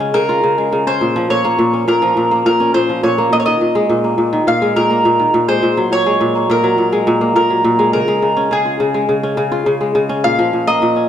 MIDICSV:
0, 0, Header, 1, 3, 480
1, 0, Start_track
1, 0, Key_signature, -5, "major"
1, 0, Tempo, 576923
1, 843, Time_signature, 4, 2, 24, 8
1, 9224, End_track
2, 0, Start_track
2, 0, Title_t, "Mandolin"
2, 0, Program_c, 0, 25
2, 117, Note_on_c, 0, 70, 89
2, 722, Note_off_c, 0, 70, 0
2, 726, Note_on_c, 0, 72, 89
2, 1081, Note_off_c, 0, 72, 0
2, 1084, Note_on_c, 0, 73, 94
2, 1563, Note_off_c, 0, 73, 0
2, 1567, Note_on_c, 0, 70, 85
2, 2037, Note_off_c, 0, 70, 0
2, 2047, Note_on_c, 0, 70, 84
2, 2268, Note_off_c, 0, 70, 0
2, 2282, Note_on_c, 0, 72, 88
2, 2523, Note_off_c, 0, 72, 0
2, 2526, Note_on_c, 0, 73, 78
2, 2764, Note_off_c, 0, 73, 0
2, 2768, Note_on_c, 0, 75, 97
2, 2822, Note_off_c, 0, 75, 0
2, 2825, Note_on_c, 0, 73, 82
2, 2873, Note_off_c, 0, 73, 0
2, 2876, Note_on_c, 0, 75, 104
2, 3726, Note_on_c, 0, 77, 100
2, 3746, Note_off_c, 0, 75, 0
2, 3948, Note_off_c, 0, 77, 0
2, 3964, Note_on_c, 0, 70, 87
2, 4561, Note_off_c, 0, 70, 0
2, 4564, Note_on_c, 0, 72, 90
2, 4927, Note_off_c, 0, 72, 0
2, 4930, Note_on_c, 0, 73, 98
2, 5414, Note_off_c, 0, 73, 0
2, 5417, Note_on_c, 0, 70, 91
2, 6114, Note_off_c, 0, 70, 0
2, 6124, Note_on_c, 0, 70, 77
2, 6570, Note_off_c, 0, 70, 0
2, 6600, Note_on_c, 0, 70, 87
2, 7093, Note_on_c, 0, 68, 77
2, 7096, Note_off_c, 0, 70, 0
2, 7535, Note_off_c, 0, 68, 0
2, 8521, Note_on_c, 0, 77, 107
2, 8881, Note_on_c, 0, 75, 99
2, 8892, Note_off_c, 0, 77, 0
2, 9224, Note_off_c, 0, 75, 0
2, 9224, End_track
3, 0, Start_track
3, 0, Title_t, "Kora"
3, 0, Program_c, 1, 46
3, 0, Note_on_c, 1, 49, 79
3, 0, Note_on_c, 1, 56, 88
3, 0, Note_on_c, 1, 65, 65
3, 2, Note_on_c, 1, 61, 87
3, 110, Note_off_c, 1, 49, 0
3, 120, Note_on_c, 1, 49, 99
3, 237, Note_off_c, 1, 65, 0
3, 241, Note_on_c, 1, 65, 99
3, 352, Note_off_c, 1, 49, 0
3, 362, Note_on_c, 1, 49, 82
3, 472, Note_off_c, 1, 56, 0
3, 482, Note_on_c, 1, 56, 68
3, 593, Note_off_c, 1, 49, 0
3, 603, Note_on_c, 1, 49, 88
3, 719, Note_off_c, 1, 61, 0
3, 723, Note_on_c, 1, 61, 87
3, 841, Note_on_c, 1, 46, 79
3, 884, Note_off_c, 1, 49, 0
3, 884, Note_off_c, 1, 56, 0
3, 964, Note_on_c, 1, 53, 89
3, 1072, Note_off_c, 1, 46, 0
3, 1082, Note_on_c, 1, 46, 72
3, 1202, Note_on_c, 1, 58, 100
3, 1309, Note_off_c, 1, 46, 0
3, 1319, Note_on_c, 1, 46, 95
3, 1439, Note_off_c, 1, 61, 0
3, 1443, Note_on_c, 1, 61, 69
3, 1500, Note_off_c, 1, 65, 0
3, 1551, Note_off_c, 1, 46, 0
3, 1561, Note_on_c, 1, 46, 93
3, 1671, Note_off_c, 1, 53, 0
3, 1681, Note_on_c, 1, 53, 94
3, 1793, Note_off_c, 1, 46, 0
3, 1803, Note_on_c, 1, 46, 81
3, 1921, Note_off_c, 1, 58, 0
3, 1924, Note_on_c, 1, 58, 89
3, 2035, Note_off_c, 1, 46, 0
3, 2045, Note_on_c, 1, 46, 102
3, 2161, Note_off_c, 1, 61, 0
3, 2164, Note_on_c, 1, 61, 93
3, 2275, Note_off_c, 1, 46, 0
3, 2285, Note_on_c, 1, 46, 85
3, 2397, Note_off_c, 1, 53, 0
3, 2407, Note_on_c, 1, 53, 70
3, 2514, Note_off_c, 1, 46, 0
3, 2524, Note_on_c, 1, 46, 98
3, 2644, Note_off_c, 1, 58, 0
3, 2647, Note_on_c, 1, 58, 94
3, 2755, Note_off_c, 1, 46, 0
3, 2765, Note_on_c, 1, 46, 79
3, 2804, Note_off_c, 1, 53, 0
3, 2885, Note_on_c, 1, 51, 87
3, 2924, Note_off_c, 1, 46, 0
3, 3004, Note_on_c, 1, 46, 66
3, 3044, Note_off_c, 1, 51, 0
3, 3121, Note_on_c, 1, 56, 100
3, 3231, Note_off_c, 1, 46, 0
3, 3241, Note_on_c, 1, 46, 93
3, 3359, Note_off_c, 1, 58, 0
3, 3363, Note_on_c, 1, 58, 66
3, 3466, Note_off_c, 1, 46, 0
3, 3476, Note_on_c, 1, 46, 87
3, 3600, Note_on_c, 1, 51, 90
3, 3610, Note_off_c, 1, 61, 0
3, 3644, Note_off_c, 1, 46, 0
3, 3644, Note_off_c, 1, 56, 0
3, 3721, Note_on_c, 1, 46, 82
3, 3764, Note_off_c, 1, 51, 0
3, 3842, Note_on_c, 1, 56, 93
3, 3952, Note_off_c, 1, 46, 0
3, 3962, Note_on_c, 1, 46, 96
3, 4076, Note_off_c, 1, 58, 0
3, 4080, Note_on_c, 1, 58, 84
3, 4193, Note_off_c, 1, 46, 0
3, 4203, Note_on_c, 1, 46, 88
3, 4322, Note_on_c, 1, 51, 71
3, 4364, Note_off_c, 1, 46, 0
3, 4364, Note_off_c, 1, 56, 0
3, 4442, Note_on_c, 1, 46, 95
3, 4484, Note_off_c, 1, 51, 0
3, 4562, Note_on_c, 1, 56, 92
3, 4671, Note_off_c, 1, 46, 0
3, 4681, Note_on_c, 1, 46, 77
3, 4724, Note_off_c, 1, 56, 0
3, 4803, Note_on_c, 1, 54, 87
3, 4914, Note_off_c, 1, 46, 0
3, 4924, Note_on_c, 1, 46, 63
3, 5044, Note_on_c, 1, 56, 92
3, 5154, Note_off_c, 1, 46, 0
3, 5164, Note_on_c, 1, 46, 91
3, 5281, Note_off_c, 1, 58, 0
3, 5284, Note_on_c, 1, 58, 65
3, 5395, Note_off_c, 1, 46, 0
3, 5405, Note_on_c, 1, 46, 94
3, 5512, Note_off_c, 1, 54, 0
3, 5521, Note_on_c, 1, 54, 92
3, 5631, Note_off_c, 1, 46, 0
3, 5641, Note_on_c, 1, 46, 76
3, 5751, Note_off_c, 1, 56, 0
3, 5761, Note_on_c, 1, 56, 98
3, 5873, Note_off_c, 1, 46, 0
3, 5882, Note_on_c, 1, 46, 105
3, 5996, Note_off_c, 1, 58, 0
3, 5999, Note_on_c, 1, 58, 95
3, 6110, Note_off_c, 1, 46, 0
3, 6120, Note_on_c, 1, 46, 89
3, 6230, Note_off_c, 1, 54, 0
3, 6240, Note_on_c, 1, 54, 74
3, 6350, Note_off_c, 1, 46, 0
3, 6360, Note_on_c, 1, 46, 101
3, 6470, Note_off_c, 1, 56, 0
3, 6480, Note_on_c, 1, 56, 99
3, 6600, Note_on_c, 1, 49, 80
3, 6644, Note_off_c, 1, 46, 0
3, 6644, Note_off_c, 1, 54, 0
3, 6644, Note_off_c, 1, 56, 0
3, 6721, Note_on_c, 1, 56, 89
3, 6831, Note_off_c, 1, 49, 0
3, 6841, Note_on_c, 1, 49, 73
3, 6960, Note_on_c, 1, 61, 94
3, 7070, Note_off_c, 1, 49, 0
3, 7080, Note_on_c, 1, 49, 87
3, 7200, Note_on_c, 1, 65, 63
3, 7311, Note_off_c, 1, 49, 0
3, 7321, Note_on_c, 1, 49, 92
3, 7431, Note_off_c, 1, 56, 0
3, 7440, Note_on_c, 1, 56, 83
3, 7551, Note_off_c, 1, 49, 0
3, 7561, Note_on_c, 1, 49, 78
3, 7605, Note_off_c, 1, 58, 0
3, 7679, Note_off_c, 1, 61, 0
3, 7682, Note_on_c, 1, 61, 94
3, 7787, Note_off_c, 1, 49, 0
3, 7797, Note_on_c, 1, 49, 100
3, 7914, Note_off_c, 1, 65, 0
3, 7917, Note_on_c, 1, 65, 95
3, 8028, Note_off_c, 1, 49, 0
3, 8038, Note_on_c, 1, 49, 91
3, 8149, Note_off_c, 1, 56, 0
3, 8159, Note_on_c, 1, 56, 72
3, 8268, Note_off_c, 1, 49, 0
3, 8278, Note_on_c, 1, 49, 101
3, 8394, Note_off_c, 1, 61, 0
3, 8398, Note_on_c, 1, 61, 96
3, 8523, Note_on_c, 1, 46, 84
3, 8564, Note_off_c, 1, 49, 0
3, 8564, Note_off_c, 1, 56, 0
3, 8642, Note_on_c, 1, 53, 97
3, 8752, Note_off_c, 1, 46, 0
3, 8762, Note_on_c, 1, 46, 65
3, 8881, Note_on_c, 1, 58, 98
3, 8993, Note_off_c, 1, 46, 0
3, 9002, Note_on_c, 1, 46, 95
3, 9117, Note_off_c, 1, 61, 0
3, 9120, Note_on_c, 1, 61, 71
3, 9177, Note_off_c, 1, 65, 0
3, 9224, Note_off_c, 1, 46, 0
3, 9224, Note_off_c, 1, 53, 0
3, 9224, Note_off_c, 1, 58, 0
3, 9224, Note_off_c, 1, 61, 0
3, 9224, End_track
0, 0, End_of_file